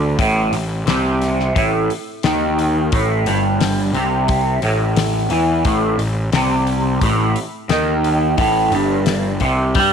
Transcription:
0.00 0.15 D2 medium
0.00 0.18 D3 loud
0.19 0.51 A1 medium
0.19 0.52 A2 loud
0.19 kick loud
0.19 open hi-hat medium
0.52 0.85 A1 medium
0.52 0.81 A2 medium
0.52 open hi-hat medium
0.86 1.51 C2 medium
0.86 1.55 C3 loud
0.86 snare loud
0.86 open hi-hat medium
1.22 snare soft
1.22 open hi-hat soft
1.40 snare soft
1.55 1.88 A1 medium
1.55 1.89 A2 loud
1.55 kick loud
1.55 open hi-hat medium
1.90 open hi-hat medium
2.23 2.89 D#2 medium
2.23 2.91 D#3 loud
2.23 snare loud
2.23 open hi-hat medium
2.59 open hi-hat medium
2.92 3.24 A1 medium
2.92 3.26 A2 loud
2.92 kick loud
2.92 open hi-hat medium
3.26 3.90 G1 medium
3.26 3.94 G2 loud
3.26 open hi-hat medium
3.61 snare medium
3.61 open hi-hat medium
3.93 4.58 C2 loud
3.93 4.62 C3 loud
3.93 open hi-hat medium
4.28 kick loud
4.28 open hi-hat medium
4.62 5.27 A1 medium
4.62 5.30 A2 medium
4.62 open hi-hat medium
4.96 snare loud
4.96 open hi-hat medium
5.29 5.62 E2 medium
5.29 5.64 E3 loud
5.29 open hi-hat medium
5.65 5.97 A1 medium
5.65 5.99 A2 loud
5.65 kick loud
5.65 open hi-hat medium
5.98 6.30 A1 medium
5.98 6.27 A2 medium
5.98 open hi-hat medium
6.32 6.97 C2 medium
6.32 7.01 C3 medium
6.32 snare loud
6.32 open hi-hat medium
6.67 open hi-hat soft
7.01 7.33 A1 medium
7.01 7.35 A2 loud
7.01 kick loud
7.01 open hi-hat medium
7.36 open hi-hat medium
7.69 8.34 D#2 medium
7.69 8.37 D#3 loud
7.69 snare loud
7.69 open hi-hat medium
8.04 open hi-hat medium
8.38 8.70 A1 medium
8.38 8.71 A2 loud
8.38 kick loud
8.38 open hi-hat medium
8.70 9.36 G1 loud
8.70 9.40 G2 loud
8.70 open hi-hat medium
9.06 snare medium
9.06 open hi-hat medium
9.40 9.73 C2 medium
9.40 9.74 C3 medium
9.40 kick medium
9.40 open hi-hat soft
9.75 9.93 G2 medium
9.75 9.93 G3 loud
9.75 kick loud
9.75 open hi-hat medium

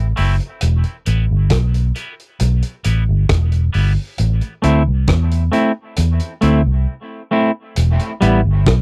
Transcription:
0.00 0.12 A1 loud
0.16 0.38 F#1 medium
0.16 0.34 A3 medium
0.16 0.35 C4 medium
0.16 0.35 E4 medium
0.16 open hi-hat medium
0.40 closed hi-hat soft
0.61 0.83 E1 medium
0.61 closed hi-hat medium
0.84 closed hi-hat soft
1.06 1.27 A1 medium
1.06 1.24 G3 medium
1.06 1.25 B3 medium
1.06 1.25 E4 medium
1.06 closed hi-hat medium
1.31 1.49 G1 medium
1.50 1.91 B1 medium
1.50 kick loud
1.50 cross-stick loud
1.50 closed hi-hat medium
1.74 closed hi-hat soft
1.95 2.13 G3 medium
1.95 2.14 B3 medium
1.95 2.14 E4 medium
1.95 closed hi-hat medium
2.19 closed hi-hat soft
2.39 2.61 B1 medium
2.39 closed hi-hat medium
2.62 closed hi-hat soft
2.84 3.06 A1 medium
2.84 3.03 G3 medium
2.84 3.03 B3 medium
2.84 3.03 E4 medium
2.84 closed hi-hat medium
3.09 3.28 G1 medium
3.29 3.69 E1 medium
3.29 kick loud
3.29 cross-stick loud
3.29 closed hi-hat medium
3.52 closed hi-hat medium
3.73 3.95 G1 medium
3.73 3.92 G3 medium
3.73 3.92 B3 medium
3.73 3.92 E4 medium
3.73 open hi-hat medium
4.18 4.40 A1 medium
4.18 closed hi-hat medium
4.41 closed hi-hat soft
4.62 4.84 D2 medium
4.62 4.81 A3 medium
4.62 4.82 C4 medium
4.62 4.82 E4 loud
4.62 closed hi-hat medium
4.87 5.06 C2 medium
5.07 5.48 E2 medium
5.07 kick loud
5.07 cross-stick loud
5.07 closed hi-hat medium
5.31 closed hi-hat medium
5.52 5.71 A3 medium
5.52 5.71 C4 medium
5.52 5.71 E4 medium
5.52 closed hi-hat medium
5.96 6.19 E2 medium
5.96 closed hi-hat medium
6.19 closed hi-hat soft
6.41 6.63 D2 medium
6.41 6.60 A3 medium
6.41 6.61 C4 medium
6.41 6.61 E4 medium
6.41 closed hi-hat medium
6.66 6.85 C2 medium
7.31 7.50 A3 medium
7.31 7.50 C4 medium
7.31 7.51 E4 medium
7.76 7.98 E1 medium
7.76 closed hi-hat medium
7.99 closed hi-hat soft
8.21 8.43 A1 medium
8.21 8.39 G3 medium
8.21 8.40 B3 medium
8.21 8.40 E4 medium
8.21 closed hi-hat medium
8.45 8.64 G1 medium
8.66 8.82 B1 loud
8.66 kick loud
8.66 cross-stick loud
8.66 closed hi-hat loud

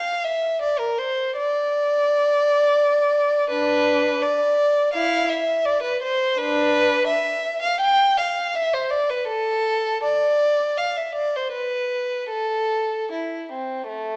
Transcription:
0.00 0.24 F5 medium
0.24 0.61 E5 medium
0.62 0.80 D5 medium
0.79 0.98 A#4 medium
0.98 1.34 C5 medium
1.36 3.47 D5 medium
3.50 4.18 D4 medium
3.50 4.21 B4 medium
4.22 4.94 D5 medium
4.93 5.27 E4 medium
4.93 5.29 F5 medium
5.29 5.65 E5 medium
5.66 5.83 D5 medium
5.83 6.01 B4 medium
6.03 6.37 C5 medium
6.38 7.05 D4 medium
6.38 7.09 B4 medium
7.07 7.61 E5 medium
7.62 7.81 F5 medium
7.81 8.17 G5 medium
8.18 8.54 F5 medium
8.55 8.73 E5 medium
8.74 8.91 C5 medium
8.91 9.09 D5 medium
9.10 9.28 B4 medium
9.28 10.02 A4 medium
10.04 10.76 D5 medium
10.78 10.96 F5 medium
10.97 11.15 E5 medium
11.15 11.33 D5 medium
11.36 11.54 C5 medium
11.52 12.29 B4 medium
12.30 13.08 A4 medium
13.12 13.50 E4 soft
13.52 13.89 C4 medium
13.89 14.16 A3 soft

